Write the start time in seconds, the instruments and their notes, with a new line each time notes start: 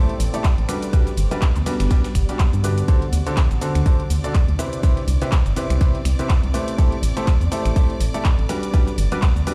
Already playing: ambient pad C4 A4, string section D5 D6
0.09 closed hi-hat
0.20 fm bass A1, open hi-hat, ride, cabasa
0.34 grand piano A3 E4 G4 A4 D5, closed hi-hat, cabasa
0.44 kick, snare, clap, closed hi-hat, ride, cabasa
0.58 fm bass A1, closed hi-hat
0.69 grand piano G3 D4 F#4 G4 B4, ambient pad B3, finger snap, open hi-hat, ride, cabasa
0.82 closed hi-hat, ride, cabasa
0.90 grand piano G3 D4 F#4 G4 B4, ambient pad G4, kick, closed hi-hat, ride, cabasa
1.07 snare, closed hi-hat, cabasa
1.17 fm bass G1, open hi-hat, ride, cabasa
1.31 grand piano G3 D4 F#4 G4 B4, closed hi-hat, cabasa
1.42 kick, snare, clap, closed hi-hat, ride, cabasa
1.50 ambient pad F#5
1.55 fm bass D2, snare, clap, closed hi-hat, cabasa
1.66 grand piano G3 D4 F#4 G4 B4, snare, open hi-hat, ride, cabasa
1.80 fm bass G1, finger snap, snare, closed hi-hat, ride, cabasa
1.91 grand piano G3 D4 F#4 G4 B4, kick, snare, closed hi-hat, ride, cabasa
2.04 snare, closed hi-hat, ride, cabasa
2.15 fm bass G1, finger snap, kick, open hi-hat, ride, cabasa
2.29 grand piano G3 D4 F#4 G4 D5, snare, closed hi-hat, cabasa
2.39 kick, snare, clap, closed hi-hat, ride, cabasa
2.53 fm bass G2, closed hi-hat, cabasa
2.64 grand piano D3 D4 F#4 G4 B4, open hi-hat, ride, cabasa
2.78 closed hi-hat, cabasa
2.88 grand piano D3 D4 F#4 A4 C5, ambient pad D4, string section D5 D6, kick, closed hi-hat, ride, cabasa
3.02 closed hi-hat, ride
3.13 fm bass D2, open hi-hat, ride, cabasa
3.27 grand piano D3 D4 F#4 A4 C5, closed hi-hat, cabasa
3.37 kick, snare, clap, closed hi-hat, ride, cabasa
3.51 fm bass A1, snare, closed hi-hat, cabasa
3.61 grand piano D3 D4 F#4 A4 C5, open hi-hat, ride, cabasa
3.75 fm bass D2, finger snap, closed hi-hat, cabasa
3.86 grand piano D3 D4 F#4 A4 C5, kick, closed hi-hat, open hi-hat, cabasa
4.00 closed hi-hat
4.10 fm bass D2, open hi-hat, ride, cabasa
4.24 grand piano D3 D4 F#4 A4 D5, closed hi-hat, cabasa
4.34 kick, snare, clap, closed hi-hat, ride, cabasa
4.48 fm bass D2, closed hi-hat
4.59 grand piano C3 E4 G4 B4 C5, ambient pad C4, finger snap, open hi-hat, ride, cabasa
4.73 closed hi-hat, ride, cabasa
4.83 grand piano C3 E4 G4 B4 C5, ambient pad B4, kick, closed hi-hat, ride, cabasa
4.97 snare, closed hi-hat
5.04 fm bass C2, ambient pad E5, open hi-hat, ride, cabasa
5.22 grand piano C3 E4 G4 B4 C5, closed hi-hat, cabasa
5.32 kick, snare, clap, closed hi-hat, ride, cabasa
5.46 fm bass G1, snare, closed hi-hat, cabasa
5.56 grand piano C3 E4 G4 B4 C5, snare, open hi-hat, ride, cabasa
5.70 fm bass C2, finger snap, closed hi-hat, cabasa
5.81 grand piano C3 E4 G4 B4 C5, kick, closed hi-hat, ride, cabasa
5.95 closed hi-hat
6.05 fm bass C2, finger snap, open hi-hat, ride, cabasa
6.19 grand piano C3 E4 G4 B4 C5, snare, closed hi-hat, cabasa
6.29 kick, snare, clap, closed hi-hat, ride, cabasa
6.44 fm bass C2, closed hi-hat
6.54 grand piano A3 E4 G4 B4 C5, open hi-hat, ride, cabasa
6.68 closed hi-hat, cabasa
6.78 grand piano A3 E4 G4 A4 C5, kick, closed hi-hat, ride, cabasa
6.88 ambient pad A4
6.92 closed hi-hat, ride
7.03 fm bass A1, open hi-hat, ride, cabasa
7.17 grand piano A3 E4 G4 A4 C5, closed hi-hat, cabasa
7.27 kick, snare, clap, closed hi-hat, ride, cabasa
7.41 fm bass E2, snare, closed hi-hat, cabasa
7.52 grand piano A3 E4 G4 A4 C5, open hi-hat, ride, cabasa
7.65 fm bass A1, finger snap, closed hi-hat, cabasa
7.76 grand piano A3 E4 G4 A4 C5, kick, closed hi-hat, open hi-hat, cabasa
7.90 closed hi-hat
8.00 fm bass A1, open hi-hat, cabasa
8.14 grand piano A3 E4 G4 A4 D5, closed hi-hat, cabasa
8.25 kick, snare, clap, closed hi-hat, ride, cabasa
8.39 fm bass A1, closed hi-hat
8.49 grand piano G3 D4 F#4 G4 B4, ambient pad B3, finger snap, open hi-hat, ride, cabasa
8.63 closed hi-hat, ride, cabasa
8.74 grand piano G3 D4 F#4 G4 B4, kick, closed hi-hat, ride, cabasa
8.78 ambient pad G4
8.87 snare, closed hi-hat, cabasa
8.98 fm bass G1, open hi-hat, ride, cabasa
9.05 ambient pad F#5
9.12 grand piano G3 D4 F#4 G4 B4, closed hi-hat, cabasa
9.22 kick, snare, clap, closed hi-hat, ride, cabasa
9.36 fm bass D2, snare, closed hi-hat, cabasa
9.47 grand piano G3 D4 F#4 G4 B4, snare, open hi-hat, ride, cabasa